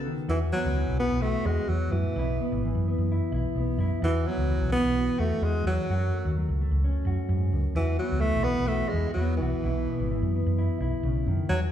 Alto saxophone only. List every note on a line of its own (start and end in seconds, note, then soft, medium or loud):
0.30 0.40 E3 loud
0.53 0.96 F#3 loud
1.00 1.23 B3 loud
1.22 1.47 A3 loud
1.46 1.71 G#3 loud
1.69 1.93 F#3 loud
1.92 2.86 E3 medium
4.04 4.29 E3 loud
4.28 4.72 F#3 loud
4.73 5.21 B3 loud
5.19 5.45 A3 loud
5.44 5.66 G#3 loud
5.67 6.56 F#3 loud
7.76 7.98 E3 loud
7.99 8.22 F#3 loud
8.21 8.45 A3 loud
8.44 8.69 B3 loud
8.68 8.91 A3 loud
8.89 9.13 G#3 medium
9.14 9.37 F#3 medium
9.37 10.28 E3 medium
11.49 11.60 F#3 medium